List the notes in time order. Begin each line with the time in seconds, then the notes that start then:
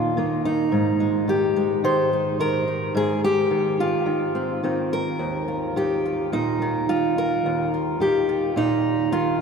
Already playing: D#2 A#2 D#3 A#3 F4
0.17 D#3 A#3
0.45 D#4
0.72 G#2
1.00 G#3
1.28 D#3 G4
1.56 G#3
1.84 D#3 C5
2.13 D#4
2.40 D#3 A#4
2.68 D#4
2.95 G#2 G#4
3.24 G4
3.51 D#3
3.80 F4
4.06 D#3
4.35 C4
4.63 D#3 C4
4.93 A#4
5.19 D#2
5.48 F4
5.76 D#3 G4
6.05 F4
6.32 A#2 D#4
6.62 D#3
6.89 D#3 F4
7.18 A#4
7.46 D#2
7.74 F4
8.00 D#3 G4
8.29 F4
8.56 A#2 D#4
9.12 D#3 F4